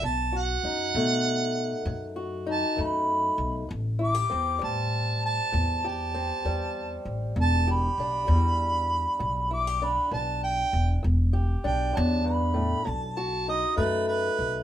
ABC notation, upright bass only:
X:1
M:12/8
L:1/8
Q:3/8=66
K:Em
V:1 name="Upright bass" clef=bass
B,,,2 F,, B,,3 F,,3 F,,2 B,,, | A,,,2 E,, A,,3 E,,3 E,,2 A,,, | E,,,2 B,,, E,,3 B,,,3 B,,,2 E,,, | E,,,2 B,,, E,,3 B,,,3 F,,2 B,,, |]